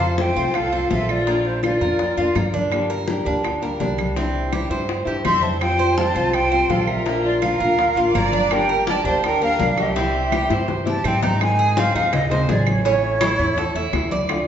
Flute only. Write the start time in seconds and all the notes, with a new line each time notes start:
Already playing: F5
0.19 G5
0.55 F5
0.92 E5
1.11 D5
1.46 C5
1.64 D5
5.26 C6
5.43 A5
5.61 G5
5.98 A5
6.34 G5
6.71 F5
6.89 E5
7.24 D5
7.43 F5
8.16 A#5
8.52 G5
8.89 A5
9.07 A5
9.26 G5
9.44 F5
9.80 E5
10.89 A5
11.07 G5
11.25 A#5
11.43 G#5
11.79 F5
12.14 D#5
12.51 D5
12.69 C#5